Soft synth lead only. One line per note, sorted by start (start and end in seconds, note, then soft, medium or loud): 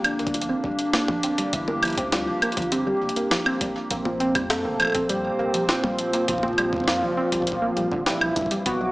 0.04 0.93 D4 loud
0.93 1.54 D4 medium
1.53 1.82 E4 loud
1.83 1.96 E4 medium
2.12 2.73 F4 loud
2.72 3.61 G4 loud
3.91 4.52 C4 loud
4.50 5.09 A4 loud
5.10 5.65 G4 loud
5.69 6.24 F4 loud
6.28 8.03 F4 loud
8.06 8.62 E4 loud
8.66 8.92 F#4 loud